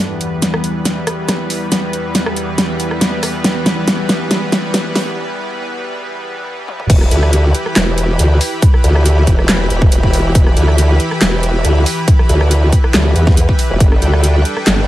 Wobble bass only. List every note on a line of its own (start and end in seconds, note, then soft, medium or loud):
6.90 7.10 E1 medium
7.11 7.53 D2 loud
7.76 8.18 E1 loud
8.19 8.39 D2 loud
8.84 9.26 D2 loud
9.27 9.69 E1 loud
9.70 9.90 E1 loud
9.92 10.33 E1 loud
10.35 10.55 E1 loud
10.57 10.98 D2 loud
11.21 11.63 E1 loud
11.65 11.85 D2 loud
12.29 12.71 D2 medium
12.94 13.14 D2 loud
13.16 13.47 E2 loud
13.70 13.79 E1 loud
13.80 14.00 G1 medium
14.02 14.44 D2 loud
14.67 14.88 G1 loud